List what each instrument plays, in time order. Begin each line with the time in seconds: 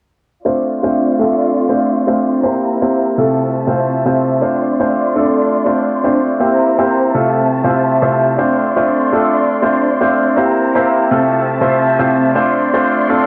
0.45 grand piano A3 C4 D4 F4 C5, violin section F4 D5 C6
0.83 grand piano A3 C4 D4 F4 C5
1.19 grand piano A3 C4 D4 F4 A4
1.69 grand piano A3 C4 D4 F4 C5
2.07 grand piano A3 C4 D4 F4 C5
2.43 grand piano A#3 C4 E4 G4 C5, violin section E4 C5 A#5
2.81 grand piano A#3 C4 E4 G4 C5
3.18 grand piano C3 A3 C4 E4 F4 A4, violin section C4 E5 A5
3.67 grand piano C3 A3 C4 E4 F4 C5
4.05 grand piano C3 A3 C4 E4 F4 C5
4.41 grand piano A3 C4 D4 F4 C5, violin section D5 C6
4.80 grand piano A3 C4 D4 F4 C5
5.16 grand piano A3 C4 D4 F4 A4
5.65 grand piano A3 C4 D4 F4 C5
6.04 grand piano A3 C4 D4 F4 C5
6.40 grand piano A#3 C4 E4 G4 C5, violin section E4 C5 A#5
6.78 grand piano A#3 C4 E4 G4 C5
7.14 grand piano C3 A3 C4 E4 F4 A4, violin section C4 E5 A5
7.64 grand piano C3 A3 C4 E4 F4 C5
8.02 grand piano C3 A3 C4 E4 F4 C5
8.38 grand piano A3 C4 D4 F4 C5, violin section D5 C6
8.76 grand piano A3 C4 D4 F4 C5
9.12 grand piano A3 C4 D4 F4 A4
9.62 grand piano A3 C4 D4 F4 C5
10.01 grand piano A3 C4 D4 F4 C5
10.37 grand piano A#3 C4 E4 G4 C5, violin section E4 C5 A#5
10.75 grand piano A#3 C4 E4 G4 C5
11.11 grand piano C3 A3 C4 E4 F4 A4, violin section C4 E5 A5
11.61 grand piano C3 A3 C4 E4 F4 C5
11.99 grand piano C3 A3 C4 E4 F4 C5
12.35 grand piano A3 C4 D4 F4 C5, violin section D5 C6
12.74 grand piano A3 C4 D4 F4 C5
13.09 grand piano A3 C4 D4 F4 A4